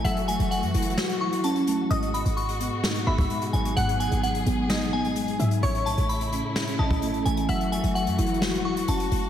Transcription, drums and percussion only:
0.05 closed hi-hat
0.17 closed hi-hat
0.28 closed hi-hat
0.39 closed hi-hat
0.51 closed hi-hat
0.63 closed hi-hat
0.74 closed hi-hat, open hi-hat
0.82 closed hi-hat
0.90 closed hi-hat
0.98 snare
1.09 closed hi-hat
1.33 closed hi-hat
1.44 closed hi-hat
1.56 closed hi-hat
1.67 closed hi-hat
1.91 closed hi-hat
2.03 closed hi-hat
2.14 closed hi-hat
2.25 closed hi-hat
2.37 closed hi-hat
2.49 closed hi-hat
2.60 closed hi-hat
2.84 snare
2.95 closed hi-hat
3.18 kick, closed hi-hat
3.30 closed hi-hat
3.42 closed hi-hat
3.53 closed hi-hat
3.65 closed hi-hat
3.77 closed hi-hat
3.89 closed hi-hat
4.00 closed hi-hat
4.12 closed hi-hat
4.23 closed hi-hat
4.35 closed hi-hat
4.46 closed hi-hat
4.70 snare
4.81 closed hi-hat
5.05 closed hi-hat
5.16 closed hi-hat
5.28 closed hi-hat
5.39 closed hi-hat
5.51 closed hi-hat
5.63 closed hi-hat
5.75 closed hi-hat
5.86 closed hi-hat
5.98 closed hi-hat
6.09 closed hi-hat
6.21 closed hi-hat
6.32 closed hi-hat
6.56 snare
6.67 closed hi-hat
6.91 kick, closed hi-hat
7.02 closed hi-hat
7.14 closed hi-hat
7.26 closed hi-hat
7.37 closed hi-hat
7.49 closed hi-hat
7.61 closed hi-hat
7.72 closed hi-hat
7.84 closed hi-hat
7.96 closed hi-hat
8.07 closed hi-hat
8.19 closed hi-hat, open hi-hat
8.26 closed hi-hat
8.34 closed hi-hat
8.42 snare
8.53 closed hi-hat
8.77 closed hi-hat
8.88 closed hi-hat
9.00 closed hi-hat
9.12 closed hi-hat

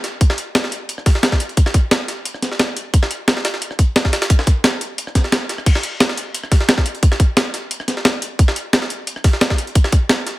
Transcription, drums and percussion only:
0.04 snare, closed hi-hat
0.21 kick, closed hi-hat
0.30 cross-stick, snare
0.38 closed hi-hat
0.55 snare, closed hi-hat
0.64 snare
0.72 closed hi-hat
0.89 closed hi-hat
0.98 cross-stick
1.06 kick, snare, closed hi-hat, open hi-hat
1.15 snare
1.23 snare, closed hi-hat
1.32 kick, snare
1.40 closed hi-hat
1.49 closed hi-hat
1.57 kick, closed hi-hat
1.66 cross-stick, snare
1.74 kick, closed hi-hat
1.91 snare, closed hi-hat
2.08 snare, closed hi-hat
2.25 closed hi-hat
2.34 cross-stick
2.42 snare, closed hi-hat
2.52 snare
2.59 snare, closed hi-hat
2.77 closed hi-hat
2.94 kick, closed hi-hat
3.03 cross-stick, snare
3.11 closed hi-hat
3.28 snare, closed hi-hat
3.37 snare
3.45 snare, closed hi-hat
3.54 snare
3.62 closed hi-hat
3.71 cross-stick
3.79 kick, closed hi-hat
3.96 snare, closed hi-hat
4.05 kick, snare
4.13 snare, closed hi-hat
4.22 snare, closed hi-hat
4.30 kick, closed hi-hat
4.39 cross-stick, snare
4.47 kick, closed hi-hat
4.64 snare, closed hi-hat
4.81 closed hi-hat
4.98 closed hi-hat
5.07 cross-stick
5.15 kick, snare, closed hi-hat
5.24 snare
5.32 snare, closed hi-hat
5.49 snare, closed hi-hat
5.58 cross-stick
5.66 kick, closed hi-hat, crash
5.75 cross-stick, snare
5.83 closed hi-hat
6.00 snare, closed hi-hat
6.09 snare
6.17 closed hi-hat
6.34 closed hi-hat
6.43 cross-stick
6.52 kick, snare, closed hi-hat, open hi-hat
6.61 snare
6.69 snare, closed hi-hat
6.78 kick, snare
6.86 closed hi-hat
6.95 closed hi-hat
7.03 kick, closed hi-hat
7.12 cross-stick, snare
7.20 kick, closed hi-hat
7.37 snare, closed hi-hat
7.54 snare, closed hi-hat
7.71 closed hi-hat
7.80 cross-stick
7.88 snare, closed hi-hat
7.97 snare
8.05 snare, closed hi-hat
8.22 closed hi-hat
8.39 kick, closed hi-hat
8.48 cross-stick, snare
8.56 closed hi-hat
8.73 snare, closed hi-hat
8.82 snare
8.90 closed hi-hat
9.07 closed hi-hat
9.16 cross-stick
9.24 kick, snare, closed hi-hat, open hi-hat
9.33 snare
9.41 snare, closed hi-hat
9.50 kick, snare
9.58 closed hi-hat
9.67 closed hi-hat
9.75 kick, closed hi-hat
9.84 cross-stick, snare
9.92 kick, closed hi-hat
10.09 snare, closed hi-hat
10.27 snare, closed hi-hat

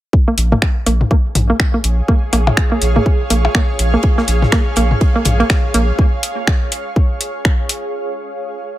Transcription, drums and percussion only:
0.13 kick
0.38 closed hi-hat
0.52 mid tom
0.62 finger snap, kick
0.86 closed hi-hat
1.01 mid tom
1.11 kick
1.35 closed hi-hat, mid tom
1.60 finger snap, kick
1.84 closed hi-hat
2.08 kick
2.33 closed hi-hat, percussion blips
2.47 mid tom, percussion blips
2.57 finger snap, kick
2.82 closed hi-hat
2.96 mid tom
3.06 kick
3.30 closed hi-hat
3.45 percussion blips
3.55 finger snap, kick
3.79 closed hi-hat
4.03 kick, ride
4.18 snare
4.28 closed hi-hat, ride
4.42 snare, mid tom
4.52 finger snap, kick, snare, ride
4.76 closed hi-hat, ride
4.91 mid tom
5.01 kick, ride
5.25 closed hi-hat, mid tom, ride
5.40 ride
5.50 finger snap, kick, snare, ride
5.74 closed hi-hat, ride
5.99 kick
6.23 closed hi-hat
6.47 finger snap, kick
6.72 closed hi-hat
6.96 kick
7.21 closed hi-hat
7.45 finger snap, kick
7.69 closed hi-hat

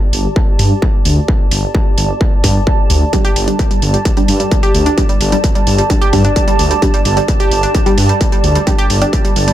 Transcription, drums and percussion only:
0.13 open hi-hat
0.36 kick
0.59 open hi-hat
0.82 kick
1.05 open hi-hat
1.28 kick
1.51 open hi-hat
1.75 kick
1.98 open hi-hat
2.21 kick
2.44 kick, open hi-hat
2.67 kick
2.90 open hi-hat
3.13 kick, closed hi-hat
3.25 closed hi-hat
3.36 open hi-hat
3.48 closed hi-hat
3.59 kick, closed hi-hat
3.71 closed hi-hat
3.82 open hi-hat
3.94 closed hi-hat
4.05 kick, closed hi-hat
4.17 closed hi-hat
4.28 open hi-hat
4.40 closed hi-hat
4.51 kick, closed hi-hat
4.63 closed hi-hat
4.75 open hi-hat
4.86 closed hi-hat
4.98 kick, closed hi-hat
5.09 closed hi-hat
5.21 open hi-hat
5.32 closed hi-hat
5.44 kick, closed hi-hat
5.55 closed hi-hat
5.67 open hi-hat
5.78 closed hi-hat
5.90 kick, closed hi-hat
6.02 closed hi-hat
6.13 kick, open hi-hat
6.25 closed hi-hat
6.36 kick, closed hi-hat
6.48 closed hi-hat
6.59 open hi-hat
6.71 closed hi-hat
6.82 kick, closed hi-hat
6.94 closed hi-hat
7.05 open hi-hat
7.17 closed hi-hat
7.28 kick, closed hi-hat
7.40 closed hi-hat
7.51 open hi-hat
7.63 closed hi-hat
7.75 kick, closed hi-hat
7.86 closed hi-hat
7.98 open hi-hat
8.09 closed hi-hat
8.21 kick, closed hi-hat
8.32 closed hi-hat
8.44 open hi-hat
8.55 closed hi-hat
8.67 kick, closed hi-hat
8.78 closed hi-hat
8.90 open hi-hat
9.02 closed hi-hat
9.13 kick, closed hi-hat
9.25 closed hi-hat
9.36 open hi-hat
9.48 closed hi-hat

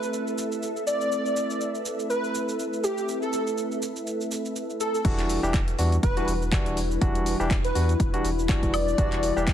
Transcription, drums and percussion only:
0.03 cabasa
0.14 cabasa
0.27 cabasa
0.38 cabasa
0.52 cabasa
0.63 cabasa
0.77 cabasa
0.87 cabasa
1.01 cabasa
1.12 cabasa
1.26 cabasa
1.36 cabasa
1.50 cabasa
1.61 cabasa
1.75 cabasa
1.86 cabasa
1.99 cabasa
2.10 cabasa
2.24 cabasa
2.35 cabasa
2.49 cabasa
2.59 cabasa
2.73 cabasa
2.84 cabasa
2.98 cabasa
3.09 cabasa
3.22 cabasa
3.33 cabasa
3.47 cabasa
3.58 cabasa
3.72 cabasa
3.82 cabasa
3.96 cabasa
4.07 cabasa
4.21 cabasa
4.31 cabasa
4.45 cabasa
4.56 cabasa
4.70 cabasa
4.81 cabasa
4.95 cabasa
5.05 kick, closed hi-hat, crash, cabasa
5.19 clap, closed hi-hat, cabasa
5.29 open hi-hat, cabasa
5.44 cabasa
5.54 kick, clap, closed hi-hat, cabasa
5.68 closed hi-hat, cabasa
5.79 open hi-hat, cabasa
5.92 closed hi-hat, cabasa
6.03 kick, closed hi-hat, cabasa
6.17 closed hi-hat, cabasa
6.28 open hi-hat, cabasa
6.42 cabasa
6.52 kick, clap, closed hi-hat, cabasa
6.66 closed hi-hat, cabasa
6.77 open hi-hat, cabasa
6.91 cabasa
7.01 kick, closed hi-hat, cabasa
7.15 closed hi-hat, cabasa
7.26 open hi-hat, cabasa
7.40 cabasa
7.51 kick, clap, closed hi-hat, cabasa
7.65 closed hi-hat, cabasa
7.75 open hi-hat, cabasa
7.89 closed hi-hat, cabasa
8.00 kick, closed hi-hat, cabasa
8.14 closed hi-hat, cabasa
8.25 open hi-hat, cabasa
8.39 cabasa
8.49 kick, clap, closed hi-hat, cabasa
8.63 kick, closed hi-hat, cabasa
8.74 open hi-hat, cabasa, high woodblock
8.88 cabasa
8.98 kick, closed hi-hat, cabasa
9.12 clap, closed hi-hat, cabasa
9.23 open hi-hat, cabasa
9.37 cabasa
9.47 kick, clap, closed hi-hat, cabasa

